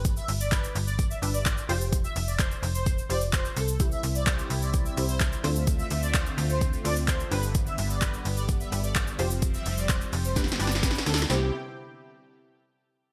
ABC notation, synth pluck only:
X:1
M:4/4
L:1/16
Q:1/4=128
K:C
V:1 name="Synth pluck"
[DGB]4 z6 [DGB]4 [FGc]2- | [FGc]4 z6 [FGc]4- [FGc] z | [EGc]6 z4 [EGc]4 [A,CDFc]2- | [A,CDFc]4 z6 [A,CDFc]4 [DGB]2- |
[DGB]4 z6 [DGB]4 [FGc]2- | [FGc]4 z4 [DGB]2 [DGB]4- [DGB] z | [G,CEc]2 z12 z2 |]